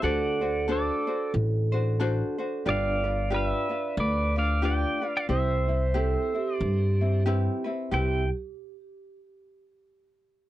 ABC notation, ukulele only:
X:1
M:4/4
L:1/8
Q:"Swing" 1/4=91
K:C
V:1 name="Ukulele"
[D^FAc] [DFc] [DFAc] [DFc]2 [DFc] [DFAc] [DFc] | [DFGB] [DFB] [DFGB] [DFB]2 [DFB] [DFGB] [DFB] | [CEG] [CE] [CEG] [CE]2 [CE] [CEGB] [CEB] | [CEGB] z6 z |]